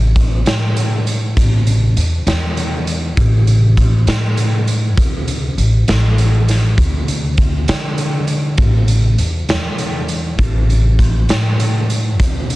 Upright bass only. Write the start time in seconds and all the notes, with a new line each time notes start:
Already playing: A1
0.45 A2
1.37 A1
1.97 E2
2.27 E2
3.17 A1
4.07 A2
4.97 D2
5.58 A1
5.88 A1
6.78 D2
7.69 D3
8.58 A1
9.18 E2
9.49 E2
10.38 A1
11.29 A2
12.19 D2